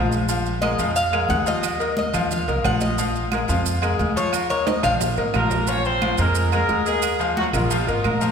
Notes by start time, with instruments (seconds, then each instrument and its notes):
Already playing: upright bass A#1, grand piano F3 F4 F5, cuban tres C5
0.11 high conga, maracas
0.28 grand piano F3 F4 F5, high conga, low agogo, maracas
0.45 high conga, maracas
0.62 grand piano G#3 G#4 A#4, cuban tres D#5, high conga, low agogo, claves, maracas
0.78 upright bass F2, grand piano F3 F4 F5, high conga, low agogo, maracas
0.96 cuban tres F5, high conga, maracas
1.12 grand piano G#3 G#4 A#4, high conga, low agogo, claves, maracas
1.29 upright bass D#2, cuban tres F#5, high conga, low agogo, maracas
1.46 grand piano F3 F4 F5, cuban tres D#5, high conga, maracas
1.63 high conga, low agogo, claves, maracas
1.80 grand piano A#3 A#4 D#5, high conga, low agogo, maracas
1.97 cuban tres D#5, high conga, maracas
2.14 upright bass D#2, grand piano F3 F4 F5, low conga, low agogo, claves, maracas
2.31 cuban tres F5, high conga, low conga, maracas
2.48 upright bass C2, grand piano A#3 A#4 D#5, high conga, low agogo, maracas
2.64 upright bass A#1, grand piano F3 F4 F5, cuban tres F#5, high conga, low timbale, low agogo, claves, maracas
2.81 cuban tres D#5, high conga, maracas
2.98 grand piano F3 F4 F5, high conga, low agogo, maracas
3.16 high conga, maracas
3.32 grand piano G#3 G#4 A#4, high conga, low agogo, claves, maracas
3.48 upright bass F2, grand piano F3 F4 F5, high conga, low agogo, maracas
3.66 high conga, maracas
3.82 grand piano G#3 G#4 A#4, high conga, low agogo, claves, maracas
3.99 upright bass D#2, high conga, low agogo, maracas
4.16 grand piano F3 F4 F5, cuban tres C#5, maracas
4.33 cuban tres A#4, high conga, low agogo, claves, maracas
4.50 grand piano A#3 A#4 D#5, cuban tres C#5, high conga, low agogo, maracas
4.67 cuban tres D#5, high conga, high timbale, maracas
4.83 upright bass A#1, grand piano F3 F4 F5, cuban tres F5, low conga, low agogo, claves, maracas
5.01 high conga, low conga, low timbale, maracas
5.17 upright bass G#1, grand piano A#3 A#4 D#5, high conga, low agogo, maracas
5.34 upright bass A#1, grand piano F3 F4 F5, horn section A#3 A#4, high conga, low timbale, low agogo, claves, maracas
5.51 high conga, low timbale, maracas
5.67 grand piano F3 F4 F5, horn section C#4 C#5, high conga, low agogo, maracas
5.85 horn section C4 C5, high conga, maracas
6.02 grand piano F3 F4 F5, high conga, low agogo, claves, maracas
6.18 upright bass F2, grand piano G#3 G#4 A#4, horn section A#3 A#4, high conga, low agogo, maracas
6.35 high conga, maracas
6.52 grand piano G#3 G#4 A#4, horn section A#3 A#4, high conga, low agogo, claves, maracas
6.69 upright bass D#2, high conga, low agogo, maracas
6.85 horn section G#3 G#4, grand piano A#3 A#4 D#5, high conga, maracas
7.02 high conga, low agogo, claves, maracas
7.19 grand piano F3 F4 F5, high conga, low agogo, maracas
7.36 horn section F#3 F#4, high conga, maracas
7.53 upright bass A#1, horn section F3 F4, grand piano A#3 A#4 D#5, low conga, low agogo, claves, maracas
7.71 grand piano F3 F4 F5, high conga, maracas
7.87 upright bass G#1, grand piano A#3 A#4 D#5, high conga, low agogo, maracas
8.03 upright bass A#1, horn section A#3 A#4, high conga, low agogo, claves, maracas
8.21 grand piano F3 F4 F5, high conga, maracas